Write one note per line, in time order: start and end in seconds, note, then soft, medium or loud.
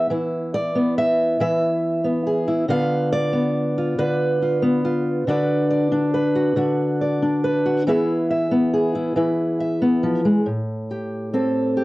0.00 0.75 B3 medium
0.00 0.54 E5 medium
0.10 1.39 E3 medium
0.10 2.46 E4 soft
0.54 0.97 D5 loud
0.75 2.04 B3 medium
0.98 1.40 E5 medium
1.40 2.64 E3 medium
1.40 2.70 E5 medium
2.04 2.69 B3 medium
2.27 2.65 G#4 soft
2.48 2.64 E4 soft
2.68 3.98 D3 medium
2.68 3.32 B3 soft
2.68 3.77 F4 soft
2.68 3.98 B4 soft
2.68 3.12 F5 loud
3.13 4.85 D5 loud
3.33 4.62 B3 medium
3.78 4.41 F4 soft
3.98 5.26 D3 medium
3.98 5.28 B4 medium
4.42 4.83 F4 soft
4.62 5.28 B3 medium
4.85 5.23 F4 medium
5.27 6.55 D3 medium
5.27 5.91 D4 medium
5.27 6.34 F#4 medium
5.27 6.14 B4 medium
5.27 5.69 D5 medium
5.71 7.00 D5 medium
5.92 7.21 D4 medium
6.14 7.43 B4 medium
6.35 6.56 F#4 medium
6.56 7.86 D3 medium
6.56 7.64 F#4 medium
7.01 7.82 D5 medium
7.22 7.82 D4 medium
7.44 7.82 B4 medium
7.65 7.82 F#4 soft
7.87 9.14 E3 medium
7.87 8.50 B3 soft
7.87 8.94 E4 medium
7.87 8.72 G#4 medium
7.87 8.29 E5 medium
8.30 9.59 E5 medium
8.51 9.80 B3 medium
8.73 10.41 G#4 medium
8.95 9.16 E4 medium
9.16 10.40 E3 medium
9.16 10.41 E4 medium
9.60 10.41 E5 medium
9.82 10.24 B3 medium
10.03 10.25 F3 medium
10.25 10.46 G#3 medium
10.46 11.84 A2 medium
10.91 11.77 G4 soft
11.34 11.84 C4 medium
11.34 11.84 A4 soft
11.77 11.84 G4 soft